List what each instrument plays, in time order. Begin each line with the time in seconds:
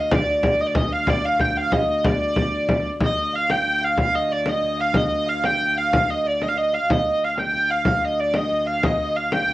Already playing: viola da gamba D2, hurdy-gurdy D#5, harp D#5 F5 G5 A5
0.11 harp D5, hurdy-gurdy D5, frame drum
0.28 harp D#5
0.43 hurdy-gurdy D5, frame drum
0.59 harp D#5, hurdy-gurdy D#5, frame drum
0.66 hurdy-gurdy D5
0.73 harp D#5, hurdy-gurdy D#5, frame drum
0.91 hurdy-gurdy F5, frame drum
1.07 harp D5, hurdy-gurdy D5, frame drum
1.23 harp F5, hurdy-gurdy F5
1.39 harp G5, hurdy-gurdy G5, frame drum
1.56 harp F5, hurdy-gurdy F5, frame drum
1.72 hurdy-gurdy D#5, harp D#5, frame drum
1.88 harp D#5, frame drum
2.04 harp D5, hurdy-gurdy D5, frame drum
2.21 frame drum
2.36 frame drum
2.69 frame drum
2.86 frame drum
3.01 viola da gamba D2, harp D#5, hurdy-gurdy D#5, frame drum
3.17 harp D#5, frame drum
3.33 harp F5, hurdy-gurdy F5
3.49 harp G5, hurdy-gurdy G5, frame drum
3.66 frame drum
3.81 harp F5, hurdy-gurdy F5
3.97 harp F5, frame drum
4.01 hurdy-gurdy F5
4.13 harp D#5, hurdy-gurdy D#5, frame drum
4.29 harp D5, hurdy-gurdy D5
4.44 harp D#5, frame drum
4.49 hurdy-gurdy D#5
4.62 frame drum
4.77 harp F5, hurdy-gurdy F5
4.94 hurdy-gurdy D#5, frame drum
5.09 harp D#5, frame drum
5.26 harp F5, hurdy-gurdy F5
5.42 harp G5, hurdy-gurdy G5, frame drum
5.61 frame drum
5.75 harp F5, hurdy-gurdy F5
5.91 harp F5, hurdy-gurdy F5, frame drum
6.10 hurdy-gurdy D#5
6.24 harp D5, hurdy-gurdy D5
6.40 harp D#5, hurdy-gurdy D#5, frame drum
6.48 hurdy-gurdy F5
6.55 harp D#5, hurdy-gurdy D#5
6.72 harp F5, hurdy-gurdy F5
6.88 viola da gamba D2, harp D#5, hurdy-gurdy D#5, frame drum
7.04 harp D#5, frame drum
7.24 hurdy-gurdy F5
7.36 harp G5, hurdy-gurdy G5, frame drum
7.53 harp G5, frame drum
7.69 harp F5, hurdy-gurdy F5
7.84 harp F5, hurdy-gurdy F5, frame drum
8.01 harp D#5, hurdy-gurdy D#5, frame drum
8.20 hurdy-gurdy D5
8.34 harp D#5, hurdy-gurdy D#5, frame drum
8.51 frame drum
8.65 harp F5, hurdy-gurdy F5
8.81 harp D#5, hurdy-gurdy D#5, frame drum
8.97 harp D#5, frame drum
9.14 harp F5, hurdy-gurdy F5
9.31 harp G5, hurdy-gurdy G5, frame drum
9.48 frame drum